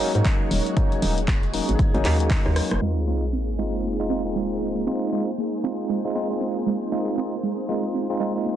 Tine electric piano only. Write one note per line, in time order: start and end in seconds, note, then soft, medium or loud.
0.00 0.11 F#3 medium
0.00 0.11 A#3 medium
0.00 0.11 C#4 medium
0.00 0.11 D#4 medium
0.15 0.74 F#3 medium
0.15 0.74 A#3 medium
0.15 0.74 C#4 medium
0.15 0.74 D#4 medium
0.77 1.00 F#3 medium
0.77 1.00 A#3 medium
0.77 1.00 C#4 medium
0.77 1.00 D#4 loud
1.02 1.19 F#3 medium
1.02 1.19 A#3 medium
1.02 1.19 C#4 medium
1.02 1.19 D#4 medium
1.53 1.91 F#3 loud
1.53 1.91 A#3 medium
1.53 1.91 C#4 medium
1.53 1.91 D#4 loud
1.94 2.03 F#3 loud
1.94 2.03 A#3 medium
1.94 2.03 C#4 medium
1.94 2.03 D#4 loud
2.05 2.16 F#3 medium
2.05 2.16 A#3 medium
2.05 2.17 C#4 medium
2.05 2.17 D#4 medium
2.20 2.79 F#3 medium
2.20 2.79 A#3 medium
2.20 2.79 C#4 medium
2.20 2.79 D#4 medium
2.82 3.05 G#3 medium
2.82 3.05 C4 medium
2.82 3.05 D#4 medium
2.82 3.05 F4 medium
3.07 3.24 G#3 medium
3.07 3.24 C4 medium
3.07 3.24 D#4 medium
3.07 3.24 F4 medium
3.59 3.96 G#3 medium
3.59 3.96 C4 medium
3.59 3.96 D#4 medium
3.59 3.96 F4 medium
3.99 4.08 G#3 medium
3.99 4.08 C4 medium
3.99 4.08 D#4 medium
3.99 4.08 F4 loud
4.10 4.22 G#3 medium
4.10 4.22 C4 medium
4.10 4.22 D#4 medium
4.10 4.22 F4 medium
4.25 4.84 G#3 medium
4.25 4.84 C4 medium
4.25 4.84 D#4 medium
4.25 4.84 F4 medium
4.87 5.10 G#3 medium
4.87 5.10 C4 medium
4.87 5.10 D#4 medium
4.87 5.10 F4 medium
5.12 5.29 G#3 medium
5.12 5.29 C4 medium
5.12 5.29 D#4 medium
5.12 5.29 F4 medium
5.64 6.01 G#3 medium
5.64 6.01 C4 medium
5.64 6.01 D#4 medium
5.64 6.01 F4 medium
6.05 6.13 G#3 medium
6.05 6.13 C4 medium
6.05 6.13 D#4 medium
6.05 6.14 F4 loud
6.15 6.27 G#3 medium
6.15 6.27 C4 medium
6.15 6.27 D#4 medium
6.15 6.27 F4 medium
6.30 6.89 G#3 medium
6.30 6.89 C4 medium
6.30 6.90 D#4 medium
6.30 6.90 F4 medium
6.92 7.15 G#3 medium
6.92 7.15 C4 medium
6.92 7.15 D#4 medium
6.92 7.15 F4 medium
7.17 7.34 G#3 medium
7.17 7.34 C4 medium
7.17 7.34 D#4 medium
7.17 7.34 F4 medium
7.69 8.06 G#3 medium
7.69 8.06 C4 medium
7.69 8.06 D#4 medium
7.69 8.06 F4 loud
8.10 8.19 G#3 medium
8.10 8.19 C4 medium
8.10 8.19 D#4 medium
8.10 8.19 F4 medium
8.20 8.32 G#3 medium
8.20 8.32 C4 medium
8.20 8.32 D#4 medium
8.20 8.32 F4 medium
8.35 8.56 G#3 medium
8.35 8.56 C4 medium
8.35 8.56 D#4 medium
8.35 8.56 F4 medium